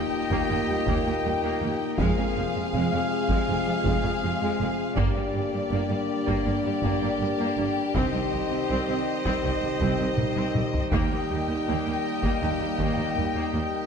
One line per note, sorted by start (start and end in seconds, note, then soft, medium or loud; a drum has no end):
0.00 1.94 A#2 medium
0.00 1.94 A#3 medium
0.00 2.68 A#3 medium
0.00 2.69 A#3 medium
0.00 1.94 D#4 medium
0.00 1.94 G4 medium
0.00 1.94 D#5 medium
0.00 1.95 D#5 medium
0.00 1.95 G5 medium
0.00 impact medium
0.30 0.39 D#2 loud
0.30 0.48 A#3 medium
0.30 taiko medium
0.49 0.57 D#2 medium
0.49 0.58 D#2 medium
0.49 0.57 A#3 medium
0.69 0.76 D#2 medium
0.69 0.76 G3 medium
0.86 0.95 D#2 loud
0.86 0.95 D#2 medium
0.86 1.04 A#3 medium
0.86 taiko medium
1.05 1.14 D#2 medium
1.05 1.13 A#3 medium
1.25 1.32 D#2 medium
1.25 1.32 G3 medium
1.43 1.50 D#2 medium
1.43 1.60 A#3 medium
1.61 1.69 D#2 medium
1.61 1.70 A#3 medium
1.97 2.07 F1 medium
1.97 2.06 F2 loud
1.97 4.96 C3 medium
1.97 2.16 G#3 medium
1.97 4.97 C4 medium
1.97 4.97 F4 medium
1.97 4.92 G#4 medium
1.97 4.97 C5 medium
1.97 4.93 F5 medium
1.97 4.98 F5 medium
1.97 4.97 G#5 medium
1.97 taiko loud
2.17 2.25 F2 medium
2.17 2.26 G#3 medium
2.36 2.44 F1 medium
2.36 2.44 F2 medium
2.36 2.44 F3 medium
2.55 2.62 F2 medium
2.55 2.62 G#3 medium
2.72 2.81 F1 medium
2.72 2.80 F2 medium
2.72 4.96 F3 medium
2.72 4.97 G#3 medium
2.72 2.91 G#3 medium
2.92 2.99 F2 medium
2.92 3.00 G#3 medium
3.29 3.36 F2 medium
3.29 3.47 G#3 medium
3.29 taiko medium
3.48 3.56 F1 medium
3.48 3.55 F2 medium
3.48 3.57 G#3 medium
3.66 3.73 F2 medium
3.66 3.74 F3 medium
3.85 3.93 F1 medium
3.85 3.92 F2 medium
3.85 4.03 G#3 medium
3.85 taiko medium
4.03 4.11 F2 medium
4.03 4.12 G#3 medium
4.22 4.30 F1 medium
4.22 4.30 F2 medium
4.22 4.30 F3 medium
4.41 4.49 F2 medium
4.41 4.58 G#3 medium
4.59 4.67 F1 medium
4.59 4.67 F2 medium
4.59 4.67 G#3 medium
4.95 5.04 G1 medium
4.95 5.04 G2 medium
4.95 7.79 D3 medium
4.95 10.91 G3 medium
4.95 5.14 A#3 loud
4.95 7.79 A#3 medium
4.95 7.94 D4 medium
4.95 10.90 G4 medium
4.95 10.92 G4 medium
4.95 10.89 G4 medium
4.95 7.94 A#4 medium
4.95 7.78 D5 medium
4.95 7.91 D5 medium
4.95 10.89 G5 medium
4.95 taiko loud
5.15 5.23 G2 medium
5.15 5.23 A#3 medium
5.33 5.41 G1 medium
5.33 5.42 G2 medium
5.33 5.41 G3 medium
5.52 5.60 G2 medium
5.52 5.60 A#3 medium
5.71 5.78 G1 medium
5.71 5.79 G2 medium
5.71 5.88 A#3 medium
5.89 5.97 G2 medium
5.89 5.97 A#3 medium
6.27 6.35 G2 medium
6.27 6.44 A#3 medium
6.27 taiko medium
6.46 6.53 G1 medium
6.46 6.53 G2 medium
6.46 6.53 A#3 medium
6.64 6.72 G2 medium
6.64 6.72 G3 medium
6.83 6.90 G1 medium
6.83 6.90 G2 medium
6.83 7.00 A#3 medium
6.83 taiko medium
7.02 7.09 G2 medium
7.02 7.09 A#3 medium
7.20 7.27 G1 medium
7.20 7.28 G2 medium
7.20 7.28 G3 medium
7.39 7.47 G2 medium
7.39 7.57 A#3 medium
7.57 7.65 G1 medium
7.57 7.65 G2 medium
7.57 7.65 A#3 medium
7.95 8.02 C2 medium
7.95 13.86 D#3 medium
7.95 8.12 C4 medium
7.95 10.89 C4 medium
7.95 13.86 D#4 medium
7.95 10.89 C5 medium
7.95 10.93 C5 medium
7.95 10.89 D#5 medium
7.95 taiko loud
8.13 8.21 C2 medium
8.13 8.21 C4 medium
8.32 8.40 C2 medium
8.32 8.40 G3 medium
8.51 8.58 C2 medium
8.51 8.59 C4 medium
8.70 8.77 C2 medium
8.70 8.87 C4 medium
8.89 8.96 C2 medium
8.89 8.96 C4 medium
9.24 9.33 C2 medium
9.24 9.42 C4 medium
9.24 taiko medium
9.44 9.51 C2 medium
9.44 9.52 C2 medium
9.44 9.51 C4 medium
9.63 9.70 C2 medium
9.63 9.70 G3 medium
9.81 9.89 C2 loud
9.81 9.89 C2 medium
9.81 9.98 C4 medium
9.81 taiko medium
10.00 10.08 C2 medium
10.00 10.07 C4 medium
10.18 10.26 C2 medium
10.18 10.25 G3 medium
10.18 taiko mid medium
10.36 10.45 C2 medium
10.36 10.54 C4 medium
10.36 taiko mid medium
10.55 10.63 C2 medium
10.55 10.63 C4 medium
10.55 taiko mid medium
10.73 taiko low medium
10.91 11.00 D#2 medium
10.91 11.01 D#2 loud
10.91 13.86 G3 medium
10.91 11.10 A#3 loud
10.91 13.86 A#3 medium
10.91 13.86 G4 medium
10.91 13.86 A#4 medium
10.91 13.86 D#5 medium
10.91 13.86 G5 medium
10.91 taiko loud
11.11 11.19 D#2 medium
11.11 11.19 A#3 medium
11.29 11.37 D#2 medium
11.29 11.38 D#2 medium
11.29 11.37 G3 medium
11.49 11.56 D#2 medium
11.49 11.56 A#3 medium
11.67 11.74 D#2 medium
11.67 11.76 D#2 medium
11.67 11.85 A#3 medium
11.86 11.93 D#2 medium
11.86 11.94 A#3 medium
12.23 12.31 D#2 medium
12.23 12.40 A#3 medium
12.23 taiko medium
12.41 12.49 D#2 medium
12.41 12.50 D#2 medium
12.41 12.49 A#3 medium
12.60 12.68 D#2 medium
12.60 12.68 G3 medium
12.79 12.86 D#2 medium
12.79 12.87 D#2 medium
12.79 12.96 A#3 medium
12.79 taiko medium
12.97 13.05 D#2 medium
12.97 13.06 A#3 medium
13.16 13.23 D#2 medium
13.16 13.24 D#2 medium
13.16 13.24 G3 medium
13.34 13.42 D#2 medium
13.34 13.52 A#3 medium
13.53 13.61 D#2 medium
13.53 13.61 A#3 medium